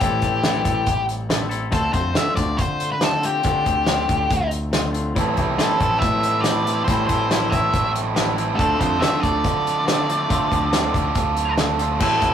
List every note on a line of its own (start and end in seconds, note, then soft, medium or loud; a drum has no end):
0.00 0.21 A2 medium
0.00 0.42 A2 medium
0.00 0.43 E3 medium
0.00 0.23 G3 medium
0.00 0.23 C4 medium
0.00 0.21 E4 medium
0.00 1.05 G4 medium
0.00 0.22 A4 medium
0.00 kick loud
0.00 closed hi-hat medium
0.22 0.62 A1 medium
0.22 0.43 G3 medium
0.22 0.45 C4 medium
0.22 0.44 E4 medium
0.22 0.45 A4 medium
0.22 kick medium
0.22 closed hi-hat medium
0.44 0.87 A2 medium
0.44 0.87 E3 medium
0.44 0.65 G3 medium
0.44 0.65 C4 medium
0.44 0.64 E4 loud
0.44 0.64 A4 medium
0.44 snare loud
0.44 closed hi-hat medium
0.64 0.85 A1 medium
0.64 1.28 G3 medium
0.64 1.29 C4 medium
0.64 1.28 E4 medium
0.64 1.30 A4 medium
0.64 kick medium
0.64 closed hi-hat medium
0.86 1.69 A1 medium
0.86 kick medium
0.86 closed hi-hat medium
1.09 closed hi-hat medium
1.29 1.51 G3 medium
1.29 1.51 C4 medium
1.29 1.49 E4 medium
1.29 1.49 A4 medium
1.29 snare loud
1.29 closed hi-hat medium
1.49 1.71 G3 medium
1.49 1.71 C4 medium
1.49 1.71 E4 medium
1.49 4.99 A4 medium
1.49 closed hi-hat medium
1.71 1.92 D2 medium
1.71 2.14 D3 medium
1.71 1.93 A3 medium
1.71 1.93 C4 medium
1.71 1.92 F4 medium
1.71 1.93 A4 medium
1.71 kick loud
1.71 closed hi-hat medium
1.93 2.14 F2 medium
1.93 2.15 A3 medium
1.93 2.15 C4 medium
1.93 2.16 F4 medium
1.93 2.16 C5 medium
1.93 kick medium
1.93 closed hi-hat medium
2.14 3.00 D3 medium
2.14 2.37 A3 medium
2.14 2.37 C4 medium
2.14 2.35 F4 loud
2.14 2.35 E5 medium
2.14 snare loud
2.14 closed hi-hat medium
2.36 2.57 D2 medium
2.36 3.00 A3 medium
2.36 3.01 C4 medium
2.36 3.01 F4 medium
2.36 2.58 D5 medium
2.36 kick medium
2.36 closed hi-hat medium
2.58 3.41 D3 medium
2.58 2.91 C5 medium
2.58 kick loud
2.58 closed hi-hat medium
2.80 closed hi-hat medium
2.92 3.04 B4 medium
3.00 3.42 D3 medium
3.00 3.24 A3 medium
3.00 3.23 C4 medium
3.00 3.21 F4 medium
3.00 3.25 A4 medium
3.00 snare loud
3.00 closed hi-hat medium
3.22 3.43 A3 soft
3.22 3.44 C4 medium
3.22 3.44 F4 medium
3.22 4.49 G4 medium
3.22 closed hi-hat medium
3.43 3.86 D3 medium
3.43 3.64 D3 medium
3.43 3.66 A3 medium
3.43 3.66 C4 medium
3.43 3.64 F4 medium
3.43 kick loud
3.43 closed hi-hat medium
3.65 4.06 D2 medium
3.65 3.88 A3 medium
3.65 3.88 C4 medium
3.65 3.88 F4 medium
3.65 kick medium
3.65 closed hi-hat medium
3.87 4.30 D3 medium
3.87 4.11 A3 medium
3.87 4.10 C4 medium
3.87 4.08 F4 medium
3.87 snare loud
3.87 closed hi-hat medium
4.09 4.29 D2 medium
4.09 4.73 A3 medium
4.09 4.73 C4 medium
4.09 4.73 F4 medium
4.09 kick medium
4.09 closed hi-hat medium
4.30 5.12 D2 medium
4.30 kick loud
4.30 closed hi-hat medium
4.51 closed hi-hat medium
4.72 5.14 D3 medium
4.72 4.95 A3 medium
4.72 4.94 C4 medium
4.72 4.92 F4 medium
4.72 snare loud
4.72 closed hi-hat medium
4.93 5.15 A3 medium
4.93 5.16 C4 medium
4.93 5.14 F4 medium
4.93 closed hi-hat medium
5.14 5.36 A1 medium
5.14 5.57 A2 medium
5.14 5.58 E3 medium
5.14 5.38 G3 medium
5.14 5.39 A3 medium
5.14 5.37 C4 medium
5.14 5.36 E4 medium
5.14 kick loud
5.14 closed hi-hat medium
5.19 5.37 A4 medium
5.36 5.57 C2 medium
5.36 5.59 G3 medium
5.36 5.58 A3 medium
5.36 5.59 C4 medium
5.36 5.59 E4 medium
5.36 5.60 A4 medium
5.36 kick medium
5.36 closed hi-hat medium
5.57 6.49 A2 medium
5.57 6.45 E3 medium
5.57 5.80 G3 medium
5.57 5.82 A3 medium
5.57 5.80 C4 loud
5.57 5.78 E4 medium
5.57 5.99 A4 medium
5.57 5.80 A4 medium
5.57 snare loud
5.57 closed hi-hat medium
5.79 6.00 A1 medium
5.79 6.45 G3 medium
5.79 6.46 A3 medium
5.79 6.46 C4 medium
5.79 6.46 E4 medium
5.79 6.47 A4 medium
5.79 kick medium
5.79 closed hi-hat medium
5.99 6.83 A2 medium
5.99 6.44 E5 medium
5.99 kick loud
5.99 closed hi-hat medium
6.23 closed hi-hat medium
6.41 6.85 A2 medium
6.41 6.82 D5 medium
6.41 snare medium
6.41 closed hi-hat medium
6.46 6.88 E3 medium
6.46 6.68 G3 medium
6.46 6.68 A3 medium
6.46 6.68 C4 medium
6.46 6.66 E4 medium
6.46 6.65 A4 loud
6.65 6.88 G3 medium
6.65 6.88 A3 soft
6.65 6.89 C4 medium
6.65 6.89 E4 medium
6.65 6.88 A4 medium
6.65 closed hi-hat medium
6.84 7.07 A2 loud
6.84 7.30 A2 medium
6.84 7.11 A3 medium
6.84 7.06 C5 medium
6.84 kick loud
6.84 closed hi-hat medium
6.89 7.30 E3 medium
6.89 7.10 G3 medium
6.89 7.10 C4 medium
6.89 7.08 E4 medium
6.89 7.08 A4 medium
7.07 7.48 A1 medium
7.07 7.32 C4 medium
7.07 7.32 E4 medium
7.07 7.31 A4 medium
7.07 7.52 C5 medium
7.07 kick medium
7.07 closed hi-hat medium
7.11 7.30 G3 medium
7.11 7.28 A3 medium
7.28 7.73 A2 medium
7.28 7.74 E3 medium
7.28 7.53 G3 medium
7.28 7.53 A3 medium
7.28 7.53 C4 medium
7.28 7.50 A4 medium
7.28 snare loud
7.28 closed hi-hat medium
7.33 7.50 E4 loud
7.50 7.72 A1 medium
7.50 8.15 A3 medium
7.50 8.16 C4 medium
7.50 8.16 E4 medium
7.50 8.17 A4 medium
7.50 7.91 E5 medium
7.50 kick medium
7.50 closed hi-hat medium
7.54 8.14 G3 medium
7.73 8.55 A1 medium
7.73 kick medium
7.73 closed hi-hat medium
7.96 closed hi-hat medium
8.14 8.57 A2 medium
8.14 8.57 E3 medium
8.14 8.37 G3 medium
8.14 8.39 A3 medium
8.14 8.37 C4 medium
8.14 8.35 E4 medium
8.14 8.36 A4 medium
8.14 snare loud
8.14 closed hi-hat medium
8.36 8.58 G3 medium
8.36 8.57 A3 medium
8.36 8.59 C4 medium
8.36 8.57 E4 medium
8.36 8.59 A4 medium
8.36 closed hi-hat medium
8.56 8.79 D2 medium
8.56 8.99 D3 medium
8.56 8.80 A3 medium
8.56 8.80 C4 medium
8.56 8.80 D4 medium
8.56 8.79 F4 medium
8.56 8.80 A4 medium
8.56 8.78 A4 medium
8.56 kick loud
8.56 closed hi-hat medium
8.79 9.00 F2 medium
8.79 9.00 A3 medium
8.79 9.00 C4 medium
8.79 9.02 D4 medium
8.79 9.01 F4 medium
8.79 9.03 A4 medium
8.79 9.00 C5 medium
8.79 kick medium
8.79 closed hi-hat medium
8.99 9.85 D3 medium
8.99 9.23 A3 medium
8.99 9.22 C4 loud
8.99 9.23 D4 medium
8.99 9.21 F4 loud
8.99 9.22 E5 medium
8.99 snare loud
8.99 closed hi-hat medium
9.03 9.22 A4 medium
9.20 9.43 D2 medium
9.20 9.85 A3 soft
9.20 9.86 C4 medium
9.20 9.85 D4 medium
9.20 9.86 F4 medium
9.20 9.88 A4 medium
9.20 11.53 D5 medium
9.20 kick medium
9.20 closed hi-hat medium
9.44 10.26 D3 medium
9.44 kick loud
9.44 closed hi-hat medium
9.67 closed hi-hat medium
9.85 10.28 D3 medium
9.85 10.10 A3 medium
9.85 10.09 C4 medium
9.85 10.09 D4 medium
9.85 10.07 F4 medium
9.85 10.08 A4 medium
9.85 snare loud
9.85 closed hi-hat medium
10.08 10.29 A3 medium
10.08 10.29 C4 medium
10.08 10.29 D4 soft
10.08 10.29 F4 medium
10.08 10.30 A4 medium
10.08 closed hi-hat medium
10.29 10.70 D3 medium
10.29 10.50 D3 medium
10.29 10.52 A3 medium
10.29 10.51 C4 medium
10.29 10.52 D4 medium
10.29 10.50 F4 medium
10.29 10.49 A4 medium
10.29 kick loud
10.29 closed hi-hat medium
10.50 10.91 D2 medium
10.50 10.71 A3 medium
10.50 10.71 C4 medium
10.50 10.71 D4 medium
10.50 10.72 F4 medium
10.50 10.73 A4 medium
10.50 kick medium
10.50 closed hi-hat medium
10.71 11.15 D3 medium
10.71 10.95 A3 medium
10.71 10.95 C4 medium
10.71 10.95 D4 medium
10.71 10.93 F4 medium
10.71 10.94 A4 medium
10.71 snare loud
10.71 closed hi-hat medium
10.94 11.14 D2 medium
10.94 11.57 A3 medium
10.94 11.58 C4 medium
10.94 11.58 D4 medium
10.94 11.58 F4 medium
10.94 11.59 A4 medium
10.94 kick medium
10.94 closed hi-hat medium
11.15 11.97 D2 medium
11.15 kick loud
11.15 closed hi-hat medium
11.37 closed hi-hat medium
11.58 11.99 D3 medium
11.58 11.80 A3 medium
11.58 11.79 C4 medium
11.58 11.80 D4 medium
11.58 11.78 F4 medium
11.58 11.78 A4 medium
11.58 snare loud
11.58 closed hi-hat medium
11.79 12.01 A3 medium
11.79 12.00 C4 medium
11.79 12.01 D4 medium
11.79 12.00 F4 medium
11.79 11.99 A4 medium
11.79 closed hi-hat medium
12.00 12.21 A1 medium
12.00 12.34 A2 medium
12.00 12.34 E3 medium
12.00 12.22 G3 medium
12.00 12.23 A3 medium
12.00 12.21 C4 medium
12.00 12.20 E4 loud
12.00 12.34 A4 medium
12.00 12.20 A4 medium
12.00 kick loud
12.00 crash medium
12.21 12.34 C2 medium
12.21 12.34 G3 medium
12.21 12.34 A3 medium
12.21 12.34 C4 medium
12.21 12.34 E4 medium
12.21 12.34 A4 medium
12.21 kick medium
12.21 closed hi-hat medium